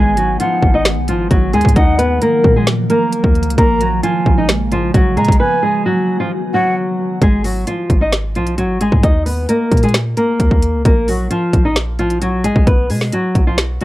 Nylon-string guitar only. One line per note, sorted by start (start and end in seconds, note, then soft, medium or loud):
0.00 0.17 G#3 medium
0.00 0.16 G#4 medium
0.17 0.39 F#3 medium
0.17 0.39 F#4 medium
0.40 0.72 F3 medium
0.40 0.72 F4 medium
0.74 0.85 D#4 medium
0.74 0.85 D#5 medium
1.09 1.30 F3 medium
1.09 1.30 F4 medium
1.31 1.53 F#3 medium
1.31 1.52 F#4 medium
1.54 1.76 G#3 medium
1.54 1.75 G#4 medium
1.77 1.98 D#4 medium
1.77 1.98 D#5 medium
1.99 2.21 B3 medium
1.99 2.20 B4 medium
2.22 2.54 A#3 medium
2.22 2.54 A#4 medium
2.56 2.67 G#3 medium
2.56 2.67 G#4 medium
2.90 3.54 A#3 medium
2.90 3.54 A#4 medium
3.58 3.80 A#3 medium
3.58 3.80 A#4 medium
3.81 4.03 F#3 medium
3.81 4.02 F#4 medium
4.03 4.36 F3 medium
4.03 4.35 F4 medium
4.38 4.48 D#4 medium
4.38 4.49 D#5 medium
4.72 4.94 F3 medium
4.72 4.93 F4 medium
4.94 5.16 F#3 medium
4.94 5.16 F#4 medium
5.17 5.39 G#3 medium
5.17 5.39 G#4 medium
5.40 5.62 B3 medium
5.40 5.61 B4 medium
5.63 5.85 G#3 medium
5.63 5.84 G#4 medium
5.86 6.18 F#3 medium
5.86 6.18 F#4 medium
6.20 6.31 F3 medium
6.20 6.30 F4 medium
6.54 7.18 F#3 medium
6.54 7.18 F#4 medium
7.23 7.44 G#3 medium
7.23 7.44 G#4 medium
7.44 7.66 F#3 medium
7.44 7.66 F#4 medium
7.67 8.00 F3 medium
7.67 7.99 F4 medium
8.01 8.12 D#4 medium
8.01 8.12 D#5 medium
8.36 8.58 F3 medium
8.36 8.57 F4 medium
8.58 8.80 F#3 medium
8.58 8.79 F#4 medium
8.81 9.03 G#3 medium
8.81 9.02 G#4 medium
9.04 9.26 D#4 medium
9.04 9.25 D#5 medium
9.26 9.48 B3 medium
9.26 9.47 B4 medium
9.49 9.81 A#3 medium
9.49 9.81 A#4 medium
9.83 9.94 G#3 medium
9.83 9.94 G#4 medium
10.17 10.82 A#3 medium
10.17 10.81 A#4 medium
10.85 11.07 A#3 medium
10.85 11.07 A#4 medium
11.08 11.30 F#3 medium
11.08 11.30 F#4 medium
11.30 11.63 F3 medium
11.30 11.63 F4 medium
11.65 11.76 D#4 medium
11.65 11.76 D#5 medium
11.99 12.21 F3 medium
11.99 12.21 F4 medium
12.22 12.43 F#3 medium
12.22 12.43 F#4 medium
12.44 12.66 G#3 medium
12.44 12.66 G#4 medium
12.67 12.89 B3 medium
12.67 12.88 B4 medium
12.90 13.12 G#3 medium
12.90 13.11 G#4 medium
13.13 13.45 F#3 medium
13.13 13.45 F#4 medium
13.47 13.58 F3 medium
13.47 13.58 F4 medium
13.81 13.84 F#4 medium